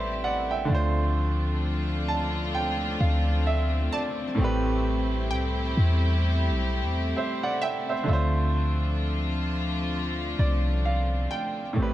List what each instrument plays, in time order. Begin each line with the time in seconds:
Already playing: 808-style bass A1, grand piano A2 A3 C4 G4 B4 C5 D5 E5, string section G3 A3 C4 E4 G4, synth pluck E5 F#5
0.24 grand piano D5 F#5
0.51 grand piano E5 G5
0.65 grand piano D3 A3, string section F3 D4 F4
0.69 808-style bass D2, string section C4, grand piano D4 F4
0.75 grand piano C5
2.08 grand piano A5
2.55 grand piano G5
3.00 808-style bass D2, grand piano F5
3.47 grand piano E5
3.93 grand piano D5, synth pluck A5
4.35 808-style bass A1, grand piano A2 A3, string section G3 E4 G4
4.39 grand piano C4 G4
4.44 grand piano B4
5.31 808-style bass C2, synth pluck G5
5.77 808-style bass E2
6.50 808-style bass B1
6.83 808-style bass E2
7.17 grand piano C5 E5
7.43 grand piano D5 F#5
7.62 synth pluck E5, grand piano E5 G5
7.89 grand piano C5 E5
8.04 808-style bass D2, grand piano D3 A3
8.08 string section F3 D4 F4, grand piano F4 E5
8.13 grand piano C5
10.39 808-style bass C2, grand piano D5
10.85 grand piano F5
11.31 synth pluck G5, grand piano G5
11.73 grand piano A2 A3, string section G3 A3 C4 E4 G4
11.77 808-style bass A1, grand piano C4 G4
11.82 grand piano B4